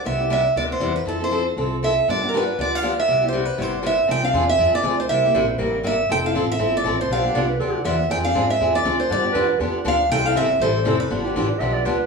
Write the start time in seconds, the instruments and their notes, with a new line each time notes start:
0.04 upright bass C2, steel-string acoustic guitar C3 G3 B3 E4 G4 E5
0.18 steel-string acoustic guitar B3 E4 G4
0.30 steel-string acoustic guitar C3 G3 B3 E4 G4 E5
0.56 upright bass D2, steel-string acoustic guitar C3 G3 B3 E4 G4 D5
0.72 steel-string acoustic guitar C5
0.80 upright bass E2, steel-string acoustic guitar C3 G3 B3 E4 G4
0.96 steel-string acoustic guitar B4
1.05 upright bass F2, steel-string acoustic guitar F3 C4 E4 A4
1.20 steel-string acoustic guitar C4 E4 A4 C5
1.31 steel-string acoustic guitar F3 C4 E4 A4
1.57 upright bass C2, steel-string acoustic guitar F3 C4 E4 A4
1.83 steel-string acoustic guitar F3 C4 E4 A4 E5
2.08 upright bass G2, steel-string acoustic guitar D3 F3 B3 D4 G4 D5
2.22 steel-string acoustic guitar B3 D4 G4
2.29 steel-string acoustic guitar A#4
2.34 steel-string acoustic guitar D3 F3 B3 D4 G4 B4
2.58 upright bass D2, steel-string acoustic guitar D3 F3 B3 D4 G4 D5
2.75 steel-string acoustic guitar F5
2.82 steel-string acoustic guitar D3 F3 B3 D4 G4
3.00 steel-string acoustic guitar E5
3.08 upright bass C2, steel-string acoustic guitar C3 G3 B3 E4 G4
3.22 steel-string acoustic guitar B3 E4 G4
3.28 steel-string acoustic guitar C5
3.33 steel-string acoustic guitar C3 G3 B3 E4 G4
3.45 steel-string acoustic guitar B4
3.58 upright bass G1, steel-string acoustic guitar C3 G3 B3 E4 G4
3.62 steel-string acoustic guitar C5
3.82 steel-string acoustic guitar C3 G3 B3 E4 G4
3.86 steel-string acoustic guitar E5
4.07 upright bass C2, steel-string acoustic guitar F3 C4 D4 G#4 G5
4.22 steel-string acoustic guitar C4 D4 G#4 F5
4.33 upright bass E2, steel-string acoustic guitar F3 C4 D4 G#4
4.49 steel-string acoustic guitar E5
4.58 upright bass F2, steel-string acoustic guitar F3 C4 D4 G#4
4.72 steel-string acoustic guitar D5, muted upright bass stroke
4.83 upright bass D2, steel-string acoustic guitar F3 C4 D4 G#4
5.00 steel-string acoustic guitar C5
5.09 upright bass C2, steel-string acoustic guitar C3 G3 A#3 E4 G4 E5
5.24 steel-string acoustic guitar A#3 E4 G4
5.34 upright bass A#1, steel-string acoustic guitar C3 G3 A#3 E4 G4, clarinet C5
5.58 upright bass A1, steel-string acoustic guitar C3 G3 A#3 E4 G4, clarinet A#4
5.83 upright bass G1, steel-string acoustic guitar C3 G3 A#3 E4 G4 E5
6.09 upright bass F1, steel-string acoustic guitar F3 C4 E4 A4 G5
6.24 steel-string acoustic guitar C4 E4 A4 F5
6.34 upright bass A1, steel-string acoustic guitar F3 C4 E4 A4
6.52 steel-string acoustic guitar E5
6.59 upright bass G1, steel-string acoustic guitar F3 C4 E4 A4
6.77 steel-string acoustic guitar D5
6.84 upright bass A1, steel-string acoustic guitar F3 C4 E4 A4
7.01 steel-string acoustic guitar C5
7.08 upright bass B1, steel-string acoustic guitar D3 F3 B3 D4 G4
7.13 steel-string acoustic guitar F5
7.24 steel-string acoustic guitar B3 D4 G4
7.34 upright bass C2, steel-string acoustic guitar D3 F3 B3 D4 G4, clarinet D5
7.49 clarinet B4
7.59 upright bass D2, steel-string acoustic guitar D3 F3 B3 D4 G4, clarinet A4
7.85 upright bass E2, steel-string acoustic guitar D3 F3 B3 D4 G4 E5
8.10 upright bass F2, steel-string acoustic guitar F3 C4 D4 G#4 G5
8.24 steel-string acoustic guitar C4 D4 G#4 F5
8.34 upright bass G#2, steel-string acoustic guitar F3 C4 D4 G#4
8.50 steel-string acoustic guitar E5
8.60 upright bass E2, steel-string acoustic guitar F3 C4 D4 G#4
8.75 steel-string acoustic guitar D5
8.85 upright bass D2, steel-string acoustic guitar F3 C4 D4 G#4
9.00 steel-string acoustic guitar C5
9.09 upright bass G2, steel-string acoustic guitar D3 F3 B3 D4 G4 D5
9.23 steel-string acoustic guitar B3 D4 G4
9.33 upright bass F2, steel-string acoustic guitar D3 F3 B3 D4 G4, clarinet B4
9.60 upright bass E2, steel-string acoustic guitar D3 F3 B3 D4 G4, clarinet G4
9.73 muted upright bass stroke
9.85 upright bass D2, steel-string acoustic guitar D3 F3 B3 D4 G4 F5
10.09 upright bass C2, steel-string acoustic guitar C3 E3 G3 C4 E4 A4 G5
10.25 steel-string acoustic guitar G3 C4 E4 A4 F5
10.35 upright bass G1, steel-string acoustic guitar C3 E3 G3 C4 E4 A4 E5
10.60 upright bass A1, steel-string acoustic guitar C3 E3 G3 C4 E4 A4 C5
10.85 upright bass F1, steel-string acoustic guitar C3 E3 G3 C4 E4 A4
11.00 steel-string acoustic guitar B4
11.10 upright bass G1, steel-string acoustic guitar D3 F3 B3 D4 G4
11.21 clarinet E4 F4, steel-string acoustic guitar G4
11.26 steel-string acoustic guitar B3 D4
11.35 upright bass A1, steel-string acoustic guitar D3 F3 B3 D4 G4, clarinet E4
11.48 clarinet G4, muted upright bass stroke
11.59 upright bass B1, steel-string acoustic guitar D3 F3 B3 D4 G4, clarinet E5
11.73 clarinet D5
11.85 upright bass D2, steel-string acoustic guitar D3 F3 B3 D4 G4, clarinet B4